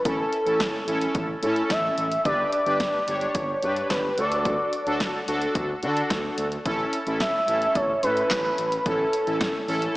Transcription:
0.05 analog synth bass A1, analog polysynth C#4 E4 A4, analog synth lead A4, kick, closed hi-hat
0.33 closed hi-hat
0.46 analog synth bass A1, analog polysynth C#4 E4 A4, closed hi-hat
0.60 kick, snare, closed hi-hat
0.88 analog synth bass A1, analog polysynth C#4 E4 A4, closed hi-hat
1.01 closed hi-hat
1.15 analog synth bass A1, kick, closed hi-hat
1.42 analog synth bass A2, analog polysynth C#4 E4 A4, closed hi-hat
1.56 closed hi-hat
1.70 analog synth bass A1, analog synth lead E5, kick, snare, closed hi-hat
1.98 analog synth bass A1, closed hi-hat
2.12 closed hi-hat
2.25 analog synth bass G1, analog polysynth D4 G4 B4, analog synth lead D5, kick, closed hi-hat
2.52 analog synth lead D5, closed hi-hat
2.66 analog synth bass G1, analog polysynth D4 G4 B4, closed hi-hat
2.80 kick, snare, closed hi-hat
3.08 analog synth bass G1, analog polysynth D4 G4 C#5, closed hi-hat
3.21 closed hi-hat
3.35 analog synth bass G1, analog synth lead C#5, kick, closed hi-hat
3.63 analog synth bass G2, analog polysynth D4 G4 B4, closed hi-hat
3.76 closed hi-hat
3.90 analog synth bass G1, analog synth lead B4, kick, snare, closed hi-hat
4.18 analog synth bass D2, analog polysynth D4 F#4 A4, analog synth lead D5, closed hi-hat
4.32 closed hi-hat
4.45 kick, closed hi-hat
4.73 closed hi-hat
4.87 analog synth bass D2, analog polysynth D4 F#4 A4, analog synth lead C#5, closed hi-hat
5.00 kick, snare, closed hi-hat
5.28 analog synth bass D2, analog polysynth D4 F#4 A4, closed hi-hat
5.42 closed hi-hat
5.55 analog synth bass D2, kick, closed hi-hat
5.83 analog synth bass D3, analog polysynth D4 F#4 A4, closed hi-hat
5.97 closed hi-hat
6.10 analog synth bass D2, kick, snare, closed hi-hat
6.38 analog synth bass D2, closed hi-hat
6.52 closed hi-hat
6.66 analog synth bass A1, analog polysynth C#4 E4 A4, kick, closed hi-hat
6.93 closed hi-hat
7.07 analog synth bass A1, analog polysynth C#4 E4 A4, closed hi-hat
7.20 analog synth lead E5, kick, snare, closed hi-hat
7.48 analog synth bass A1, analog polysynth C#4 E4 A4, closed hi-hat
7.62 closed hi-hat
7.75 analog synth bass A1, analog synth lead C#5, kick, closed hi-hat
8.03 analog synth bass A2, analog polysynth C#4 E4 A4, analog synth lead B4, closed hi-hat
8.17 closed hi-hat
8.31 analog synth bass A1, kick, snare, clap, closed hi-hat
8.58 analog synth bass A1, closed hi-hat
8.72 closed hi-hat
8.86 analog synth bass A1, analog polysynth C#4 E4 A4, analog synth lead A4, kick, closed hi-hat
9.13 closed hi-hat
9.27 analog synth bass A1, analog polysynth C#4 E4 A4, closed hi-hat
9.41 kick, snare, closed hi-hat
9.68 analog synth bass A1, analog polysynth C#4 E4 A4, open hi-hat
9.82 closed hi-hat

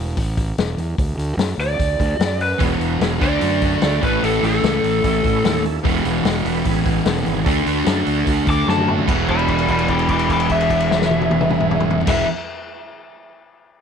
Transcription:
Already playing: fingered electric bass E1
0.17 fingered electric bass A1, kick, open hi-hat
0.37 kick, open hi-hat
0.58 fingered electric bass E1, snare, open hi-hat
0.77 fingered electric bass E2, open hi-hat
0.98 fingered electric bass D2, kick, open hi-hat
1.17 fingered electric bass D2, open hi-hat
1.37 fingered electric bass F#2, snare, open hi-hat
1.58 fingered electric bass D2, lead electric guitar D5, open hi-hat
1.79 fingered electric bass D2, kick, open hi-hat
2.00 fingered electric bass D2, kick, open hi-hat
2.19 fingered electric bass F#2, snare, open hi-hat
2.40 lead electric guitar B4, open hi-hat
2.58 fingered electric bass E1, distorted electric guitar E2 B2 E3, tonewheel organ B3 E4 G#4, kick, open hi-hat
2.78 fingered electric bass E1, tonewheel organ B3 E4 F#4, open hi-hat
3.01 fingered electric bass E1, tonewheel organ B3 E4 G#4, snare, open hi-hat
3.19 fingered electric bass D2, distorted electric guitar D3 A3 D4, tonewheel organ D4 F#4 A4, lead electric guitar D5, kick, open hi-hat
3.41 fingered electric bass F#2, open hi-hat
3.60 tonewheel organ D4 F#4 A4, kick, open hi-hat
3.82 fingered electric bass D2, tonewheel organ D4 F#4 A4, snare, open hi-hat
4.01 fingered electric bass A1, distorted electric guitar A2 E3 A3, tonewheel organ C#4 E4 A4, kick, open hi-hat
4.05 lead electric guitar B4
4.23 fingered electric bass A1, lead electric guitar A4, open hi-hat
4.42 fingered electric bass A1, tonewheel organ C#4 E4 A4, lead electric guitar A4, open hi-hat
4.62 fingered electric bass C#2, tonewheel organ C#4 E4 A4, snare, open hi-hat
4.84 fingered electric bass A1, tonewheel organ C#4 E4 A4, open hi-hat
5.03 fingered electric bass A1, tonewheel organ C#4 E4 A4, kick, open hi-hat
5.24 fingered electric bass A1, tonewheel organ C#4 E4 A4, kick, open hi-hat
5.44 fingered electric bass D#2, tonewheel organ C#4 E4 A4, snare, open hi-hat
5.63 tonewheel organ C#4 E4 A4, open hi-hat
5.83 fingered electric bass E1, distorted electric guitar E2 B2 E3, tonewheel organ B3 E4 G#4, kick, open hi-hat
6.03 fingered electric bass E1, tonewheel organ B3 E4 G#4, open hi-hat
6.22 fingered electric bass E1, tonewheel organ B3 E4 F#4, snare, open hi-hat
6.43 fingered electric bass E1, tonewheel organ B3 E4 B4, open hi-hat
6.64 fingered electric bass A1, tonewheel organ B3 E4 G#4, kick, open hi-hat
6.84 tonewheel organ B3 E4 G#4, kick, open hi-hat
7.04 fingered electric bass E1, tonewheel organ B3 E4 G#4, snare, open hi-hat
7.24 fingered electric bass G#1, tonewheel organ B3 E4 G#4, open hi-hat
7.44 fingered electric bass D2, distorted electric guitar D3 A3 D4, tonewheel organ D4 F#4 A4, kick, open hi-hat
7.66 fingered electric bass D2, tonewheel organ D4 F#4 B4, open hi-hat
7.84 fingered electric bass F#2, tonewheel organ D4 F#4 A4, snare, open hi-hat
8.04 fingered electric bass D2, tonewheel organ D4 F#4 A4, open hi-hat
8.27 fingered electric bass D2, tonewheel organ D4 F#4 A4, kick, open hi-hat
8.47 fingered electric bass D2, tonewheel organ D4 F#4 A4, lead electric guitar D6, kick, open hi-hat
8.67 fingered electric bass F#2, tonewheel organ D4 F#4 A4, lead electric guitar A5, snare
8.78 high tom
8.86 tonewheel organ D4 F#4 A4, mid tom
8.98 floor tom
9.06 fingered electric bass E1, distorted electric guitar E2 B2 E3, tonewheel organ B3 E4 G#4, kick, crash
9.28 lead electric guitar D5 B5, kick, crash
9.39 crash
9.48 lead electric guitar D5 B5, kick, crash
9.59 crash
9.68 lead electric guitar D5 B5, kick, crash
9.79 crash
9.88 lead electric guitar B5 D6, kick, crash
9.99 crash
10.09 lead electric guitar B5 D6, kick, crash
10.19 crash
10.29 lead electric guitar B5 D6, kick, crash
10.40 crash
10.49 lead electric guitar E5, kick, crash
10.61 crash
10.70 kick, crash
10.80 crash
10.91 snare
11.01 snare
11.11 high tom
11.21 high tom
11.31 high tom
11.41 mid tom
11.50 mid tom
11.60 mid tom
11.71 mid tom
11.80 mid tom
11.91 floor tom
12.01 floor tom
12.06 fingered electric bass E1, distorted electric guitar E2 B2, tonewheel organ B3 E4 G#4, lead electric guitar E5, kick, snare, crash
12.10 distorted electric guitar E3

